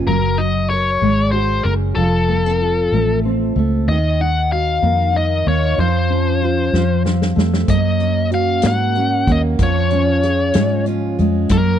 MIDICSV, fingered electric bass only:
0, 0, Header, 1, 2, 480
1, 0, Start_track
1, 0, Tempo, 635593
1, 51, Time_signature, 6, 3, 24, 8
1, 8904, End_track
2, 0, Start_track
2, 0, Title_t, "Fingered electric bass"
2, 0, Program_c, 0, 33
2, 49, Note_on_c, 0, 30, 87
2, 738, Note_off_c, 0, 30, 0
2, 768, Note_on_c, 0, 32, 73
2, 1219, Note_off_c, 0, 32, 0
2, 1245, Note_on_c, 0, 30, 71
2, 1472, Note_off_c, 0, 30, 0
2, 1484, Note_on_c, 0, 29, 89
2, 2175, Note_off_c, 0, 29, 0
2, 2208, Note_on_c, 0, 33, 76
2, 2658, Note_off_c, 0, 33, 0
2, 2688, Note_on_c, 0, 37, 74
2, 2913, Note_off_c, 0, 37, 0
2, 2928, Note_on_c, 0, 39, 95
2, 3616, Note_off_c, 0, 39, 0
2, 3646, Note_on_c, 0, 41, 78
2, 4097, Note_off_c, 0, 41, 0
2, 4129, Note_on_c, 0, 39, 85
2, 4353, Note_off_c, 0, 39, 0
2, 4367, Note_on_c, 0, 41, 90
2, 5056, Note_off_c, 0, 41, 0
2, 5085, Note_on_c, 0, 41, 83
2, 5537, Note_off_c, 0, 41, 0
2, 5566, Note_on_c, 0, 41, 82
2, 5791, Note_off_c, 0, 41, 0
2, 5801, Note_on_c, 0, 42, 79
2, 6493, Note_off_c, 0, 42, 0
2, 6524, Note_on_c, 0, 44, 86
2, 6976, Note_off_c, 0, 44, 0
2, 7004, Note_on_c, 0, 39, 82
2, 7230, Note_off_c, 0, 39, 0
2, 7242, Note_on_c, 0, 41, 91
2, 7934, Note_off_c, 0, 41, 0
2, 7970, Note_on_c, 0, 44, 74
2, 8419, Note_off_c, 0, 44, 0
2, 8452, Note_on_c, 0, 41, 81
2, 8675, Note_off_c, 0, 41, 0
2, 8684, Note_on_c, 0, 42, 96
2, 8904, Note_off_c, 0, 42, 0
2, 8904, End_track
0, 0, End_of_file